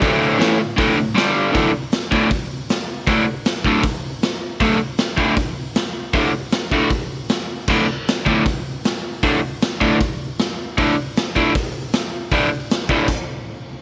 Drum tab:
CC |--------|--------|--------|--------|
HH |o-o-o-o-|o-o-o-o-|o-o-o-o-|o-o-o-o-|
SD |--o---o-|--o---o-|--o---o-|--o---o-|
BD |o---o---|o--oo---|o--oo---|o--oo---|

CC |--------|x-------|--------|--------|
HH |o-o-o-o-|--o-o-o-|o-o-o-o-|o-o-o-o-|
SD |--o---o-|--o---o-|--o---o-|--o---o-|
BD |o--oo---|o--oo---|o--oo---|o--oo---|

CC |----x---|
HH |o-o-----|
SD |--o-----|
BD |o--oo---|